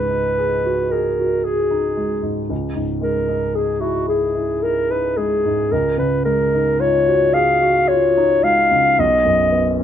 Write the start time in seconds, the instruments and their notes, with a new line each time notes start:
Already playing: grand piano C#2 G#2 G#3, clarinet B4
0.10 grand piano D#4
0.38 grand piano G#4
0.65 grand piano F#4
0.91 grand piano G#4, clarinet A#4
1.19 grand piano F#4
1.44 clarinet G#4, grand piano G#4
1.71 grand piano D#4
1.97 grand piano G#3
2.22 grand piano G#2
2.50 grand piano C#2
2.75 grand piano G#2
3.01 grand piano G#3, clarinet A#4
3.29 grand piano D#4
3.55 clarinet G#4, grand piano G#4
3.80 grand piano E4, clarinet F#4
4.08 grand piano G#4, clarinet G#4
4.35 grand piano E4
4.63 grand piano G#4, clarinet A#4
4.91 grand piano D#4, clarinet B4
5.17 grand piano G#3, clarinet G#4
5.45 grand piano G#2
5.72 grand piano C#2, clarinet A#4
5.98 grand piano C#3, clarinet B4
6.25 grand piano G#3, clarinet A#4
6.54 grand piano D#4
6.80 grand piano F4, clarinet C#5
7.07 grand piano F#4
7.34 grand piano G#4, clarinet F5
7.62 grand piano F#4
7.88 grand piano F4, clarinet C#5
8.18 grand piano D#4
8.43 grand piano G#3, clarinet F5
8.71 grand piano C#3
8.98 grand piano B1, clarinet D#5
9.25 grand piano F#2
9.52 grand piano B3
9.80 grand piano C#4